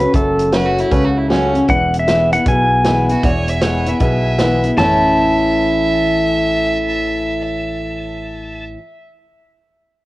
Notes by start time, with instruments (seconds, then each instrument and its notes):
Already playing: steel-string acoustic guitar C#3, pedal steel guitar B4
0.00 steel-string acoustic guitar C#4 F#4, closed hi-hat
0.13 fingered electric bass F#1, steel-string acoustic guitar F#2, upright piano F#4 A4 E5, pedal steel guitar A4, kick, closed hi-hat
0.39 closed hi-hat
0.52 steel-string acoustic guitar F#3 A3 C#4 F#4, upright piano F#4 A4 C#5, fiddle B4, snare, closed hi-hat
0.66 fiddle F#4
0.78 fiddle E4, closed hi-hat
0.91 fingered electric bass C#2, steel-string acoustic guitar C#3, upright piano F#4 A4 C#5, fiddle B4, kick, closed hi-hat
1.05 fiddle F#4
1.18 fiddle E4
1.29 steel-string acoustic guitar F#3 A3 C#4 F#4, fiddle C#4, upright piano F#4 A4 C#5, snare, closed hi-hat
1.54 steel-string acoustic guitar C#4 F#4, closed hi-hat
1.68 fingered electric bass E1, steel-string acoustic guitar E2, upright piano E4 G#4 B4, pedal steel guitar F#5, kick, closed hi-hat
1.94 closed hi-hat
2.00 pedal steel guitar E5
2.07 steel-string acoustic guitar E3 G#3 B3 E4, upright piano E4 G#4 B4, snare, closed hi-hat
2.33 steel-string acoustic guitar B3 E4, pedal steel guitar F#5, closed hi-hat
2.46 fingered electric bass B1, steel-string acoustic guitar B2, upright piano E4 G#4 B4, pedal steel guitar G#5, kick, closed hi-hat
2.85 steel-string acoustic guitar E3 G#3 B3 E4, upright piano E4 G#4 B4, snare, closed hi-hat
3.09 steel-string acoustic guitar B3 E4, fiddle F#4, closed hi-hat
3.23 fingered electric bass E1, steel-string acoustic guitar E2, upright piano E4 G#4 D5, fiddle C#5, kick, closed hi-hat
3.48 fiddle E5, closed hi-hat
3.61 steel-string acoustic guitar E3 G#3 B3 E4, upright piano E4 G#4 B4, fiddle C#5, snare, closed hi-hat
3.86 steel-string acoustic guitar B3 E4, fiddle E5, closed hi-hat
4.00 fingered electric bass B1, steel-string acoustic guitar B2, upright piano E4 G#4 B4, fiddle E5, kick, closed hi-hat
4.38 steel-string acoustic guitar E3 G#3 B3 E4, upright piano E4 G#4 B4, snare, closed hi-hat
4.63 steel-string acoustic guitar B3 E4, closed hi-hat
4.77 fingered electric bass A1, steel-string acoustic guitar A2 E3 A3 C#4 E4, upright piano E4 A4, fiddle E5, pedal steel guitar A5, snare, floor tom
4.81 upright piano C#5